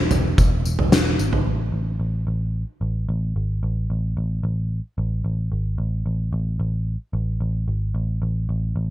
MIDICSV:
0, 0, Header, 1, 3, 480
1, 0, Start_track
1, 0, Tempo, 540541
1, 1301, Time_signature, 4, 2, 24, 8
1, 7907, End_track
2, 0, Start_track
2, 0, Title_t, "Picked electric bass"
2, 0, Program_c, 0, 34
2, 96, Note_on_c, 0, 28, 99
2, 309, Note_off_c, 0, 28, 0
2, 339, Note_on_c, 0, 28, 94
2, 551, Note_off_c, 0, 28, 0
2, 575, Note_on_c, 0, 28, 92
2, 789, Note_off_c, 0, 28, 0
2, 816, Note_on_c, 0, 28, 98
2, 1029, Note_off_c, 0, 28, 0
2, 1053, Note_on_c, 0, 32, 88
2, 1268, Note_off_c, 0, 32, 0
2, 1293, Note_on_c, 0, 33, 84
2, 1508, Note_off_c, 0, 33, 0
2, 1530, Note_on_c, 0, 33, 74
2, 1746, Note_off_c, 0, 33, 0
2, 1772, Note_on_c, 0, 33, 79
2, 1987, Note_off_c, 0, 33, 0
2, 2014, Note_on_c, 0, 33, 82
2, 2334, Note_off_c, 0, 33, 0
2, 2495, Note_on_c, 0, 33, 79
2, 2709, Note_off_c, 0, 33, 0
2, 2741, Note_on_c, 0, 33, 89
2, 2952, Note_off_c, 0, 33, 0
2, 2984, Note_on_c, 0, 32, 71
2, 3194, Note_off_c, 0, 32, 0
2, 3222, Note_on_c, 0, 33, 85
2, 3432, Note_off_c, 0, 33, 0
2, 3464, Note_on_c, 0, 33, 75
2, 3674, Note_off_c, 0, 33, 0
2, 3702, Note_on_c, 0, 33, 84
2, 3913, Note_off_c, 0, 33, 0
2, 3938, Note_on_c, 0, 33, 89
2, 4256, Note_off_c, 0, 33, 0
2, 4421, Note_on_c, 0, 33, 84
2, 4632, Note_off_c, 0, 33, 0
2, 4657, Note_on_c, 0, 33, 81
2, 4870, Note_off_c, 0, 33, 0
2, 4899, Note_on_c, 0, 32, 74
2, 5111, Note_off_c, 0, 32, 0
2, 5134, Note_on_c, 0, 33, 82
2, 5348, Note_off_c, 0, 33, 0
2, 5378, Note_on_c, 0, 33, 79
2, 5591, Note_off_c, 0, 33, 0
2, 5617, Note_on_c, 0, 33, 81
2, 5830, Note_off_c, 0, 33, 0
2, 5856, Note_on_c, 0, 33, 85
2, 6175, Note_off_c, 0, 33, 0
2, 6334, Note_on_c, 0, 33, 76
2, 6548, Note_off_c, 0, 33, 0
2, 6575, Note_on_c, 0, 33, 79
2, 6789, Note_off_c, 0, 33, 0
2, 6817, Note_on_c, 0, 32, 73
2, 7030, Note_off_c, 0, 32, 0
2, 7055, Note_on_c, 0, 33, 85
2, 7269, Note_off_c, 0, 33, 0
2, 7297, Note_on_c, 0, 33, 77
2, 7510, Note_off_c, 0, 33, 0
2, 7538, Note_on_c, 0, 33, 88
2, 7751, Note_off_c, 0, 33, 0
2, 7776, Note_on_c, 0, 33, 84
2, 7907, Note_off_c, 0, 33, 0
2, 7907, End_track
3, 0, Start_track
3, 0, Title_t, "Drums"
3, 95, Note_on_c, 9, 43, 67
3, 95, Note_on_c, 9, 54, 69
3, 184, Note_off_c, 9, 43, 0
3, 184, Note_off_c, 9, 54, 0
3, 338, Note_on_c, 9, 36, 98
3, 339, Note_on_c, 9, 54, 66
3, 427, Note_off_c, 9, 36, 0
3, 428, Note_off_c, 9, 54, 0
3, 580, Note_on_c, 9, 54, 69
3, 669, Note_off_c, 9, 54, 0
3, 699, Note_on_c, 9, 43, 66
3, 788, Note_off_c, 9, 43, 0
3, 819, Note_on_c, 9, 38, 101
3, 824, Note_on_c, 9, 54, 81
3, 908, Note_off_c, 9, 38, 0
3, 913, Note_off_c, 9, 54, 0
3, 1059, Note_on_c, 9, 54, 66
3, 1148, Note_off_c, 9, 54, 0
3, 1178, Note_on_c, 9, 43, 68
3, 1267, Note_off_c, 9, 43, 0
3, 7907, End_track
0, 0, End_of_file